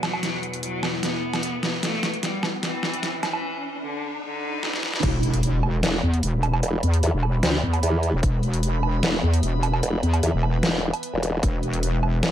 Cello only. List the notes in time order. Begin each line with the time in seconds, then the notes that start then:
0.03 F#3
0.63 F#3
1.03 B3
1.83 A3
2.23 G3
2.63 E3
3.23 E3
3.83 D3
4.23 D3